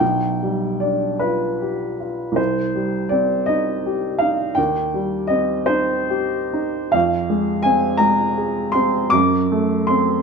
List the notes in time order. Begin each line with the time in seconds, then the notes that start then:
Already playing: G5
0.00 B1
0.42 G3
0.80 D4 D5
1.19 F4 B4
1.61 G4
2.00 F4
2.32 C2
2.36 C5
2.75 G3
3.09 C4 D5
3.46 D#4 D#5
3.86 G4
4.18 D#4 F5
4.55 D#2 G5
4.94 G3
5.27 C4 D#5
5.66 D#4 C5
6.10 G4
6.53 D#4
6.92 F2 F5
7.30 G#3
7.63 C4 G#5
7.97 G#3 A#5
8.37 G#4
8.72 C4 C6
9.10 F#2 D6
9.52 A3
9.87 C4 C6